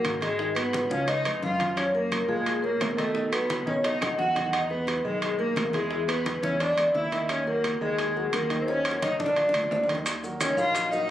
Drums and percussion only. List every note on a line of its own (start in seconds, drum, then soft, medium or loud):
0.05 high bongo soft
0.05 low bongo medium
0.05 high conga medium
0.05 high timbale medium
0.05 claves medium
0.22 high conga medium
0.22 high timbale medium
0.39 high bongo medium
0.39 high conga soft
0.56 high bongo soft
0.56 high conga soft
0.56 high timbale medium
0.56 claves medium
0.73 high bongo soft
0.73 high conga medium
0.73 high timbale medium
0.91 high conga medium
1.08 high bongo medium
1.08 high conga soft
1.08 high timbale medium
1.25 high bongo soft
1.25 high conga soft
1.25 high timbale medium
1.25 claves medium
1.43 high bongo soft
1.43 low bongo medium
1.43 high conga medium
1.60 high conga medium
1.60 high timbale medium
1.77 high bongo medium
1.77 high conga soft
1.77 high timbale medium
1.77 claves medium
1.95 high bongo soft
1.95 high conga soft
2.12 high bongo soft
2.12 high conga medium
2.12 high timbale medium
2.12 claves medium
2.46 high bongo medium
2.46 high conga soft
2.46 high timbale medium
2.64 high bongo soft
2.64 high conga soft
2.81 high bongo soft
2.81 low bongo medium
2.81 high conga medium
2.81 high timbale medium
2.81 low timbale medium
2.81 claves medium
2.98 high conga medium
2.98 high timbale medium
3.15 high bongo medium
3.15 high conga soft
3.33 high bongo soft
3.33 high conga soft
3.33 high timbale medium
3.33 claves medium
3.50 high bongo medium
3.50 high conga medium
3.50 high timbale medium
3.67 high conga medium
3.84 high bongo medium
3.84 high conga medium
3.84 high timbale medium
4.01 high bongo soft
4.01 low conga medium
4.01 high timbale medium
4.01 claves medium
4.19 high bongo soft
4.19 low bongo medium
4.36 low conga medium
4.36 high timbale medium
4.53 high bongo medium
4.53 high conga soft
4.53 high timbale medium
4.53 claves medium
4.70 high bongo soft
4.70 high conga soft
4.87 high bongo soft
4.87 high conga medium
4.87 high timbale medium
4.87 claves medium
5.22 high bongo medium
5.22 high conga soft
5.22 high timbale medium
5.39 high bongo soft
5.39 high conga soft
5.56 high bongo soft
5.56 low bongo medium
5.56 high conga medium
5.56 high timbale medium
5.56 low timbale medium
5.56 claves medium
5.73 high conga medium
5.73 high timbale medium
5.91 high bongo medium
5.91 high conga soft
6.08 high bongo soft
6.08 high conga soft
6.08 high timbale medium
6.08 claves soft
6.25 high bongo soft
6.25 high conga medium
6.25 high timbale medium
6.43 high conga medium
6.60 high bongo medium
6.60 high conga soft
6.60 high timbale medium
6.78 high bongo soft
6.78 high conga soft
6.78 high timbale medium
6.78 claves medium
6.95 high bongo soft
6.95 low bongo medium
6.95 high conga medium
7.12 high conga medium
7.12 high timbale medium
7.29 high bongo medium
7.29 high conga soft
7.29 high timbale medium
7.29 claves medium
7.47 high bongo soft
7.47 high conga soft
7.64 high bongo soft
7.64 high conga medium
7.64 high timbale medium
7.64 claves medium
7.98 high bongo medium
7.98 high conga soft
7.98 high timbale medium
8.17 high bongo soft
8.17 high conga soft
8.33 high bongo soft
8.33 low bongo medium
8.33 high conga medium
8.33 high timbale medium
8.33 claves medium
8.50 high conga medium
8.50 high timbale medium
8.68 high bongo medium
8.68 high conga soft
8.85 high conga soft
8.85 high timbale medium
8.85 claves medium
8.91 high bongo medium
9.02 low bongo medium
9.02 high conga medium
9.02 high timbale medium
9.20 high conga medium
9.26 low bongo medium
9.36 high conga soft
9.36 high timbale medium
9.49 low bongo medium
9.54 high conga soft
9.54 high timbale medium
9.54 claves medium
9.61 low bongo medium
9.71 low bongo medium
9.71 high conga medium
9.71 low timbale medium
9.84 low bongo medium
9.89 high conga medium
9.89 high timbale medium
9.95 low bongo medium
10.06 high bongo medium
10.06 high timbale medium
10.06 claves medium
10.06 maracas medium
10.23 high bongo soft
10.23 high conga soft
10.23 maracas soft
10.41 high bongo medium
10.41 high conga medium
10.41 high timbale medium
10.41 claves medium
10.41 maracas medium
10.58 maracas soft
10.75 high bongo medium
10.75 high conga soft
10.75 high timbale medium
10.75 maracas medium
10.92 high bongo soft
10.92 high conga soft
10.92 maracas soft